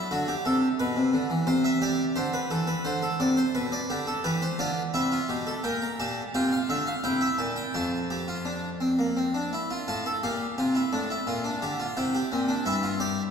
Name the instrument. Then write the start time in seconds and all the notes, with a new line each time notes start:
harpsichord
Already playing: E4
0.11 D3 F#4
0.28 G4
0.45 C3 A4
0.80 B2 B4
0.96 C3
1.13 D3
1.30 E3
1.47 C3 C5
1.64 E5
1.82 G4 D5
2.16 D3 C5
2.33 B4
2.50 E3 A4
2.67 B4
2.85 D3 C5
3.02 A4
3.20 C3 D5
3.37 C5
3.55 B2 B4
3.72 D5
3.90 D3 G4
4.07 A4
4.24 E3 G4 B4
4.42 C5
4.59 D3 F4 D5
4.94 C3 E4 E5
5.12 F4
5.29 B2 G4
5.47 A4
5.64 A#2 A#4 G5
5.82 A#5
6.00 A#2 G4 A5
6.34 C3 F4 G5
6.52 F5
6.69 D3 E5
6.87 F5
7.04 C3 E4 G5
7.21 E5
7.38 A#2 A5
7.56 G5
7.74 F2 F4 A5
8.10 G4
8.28 F4
8.45 D4
8.81 C4
8.99 A#3
9.17 C4
9.34 D4
9.53 E4
9.71 F4
9.88 A2 F4 A5
10.06 A4
10.23 A#2 G4 F5
10.58 C3 F4
10.75 E4
10.93 A2 D4
11.10 E4
11.27 A#2 F4
11.44 D4
11.62 D3 G4
11.80 F4
11.97 C3 E4 G5
12.15 G4
12.32 A#2 C4
12.48 D4
12.66 G2 E4 E5
12.83 F4
13.00 G4 D5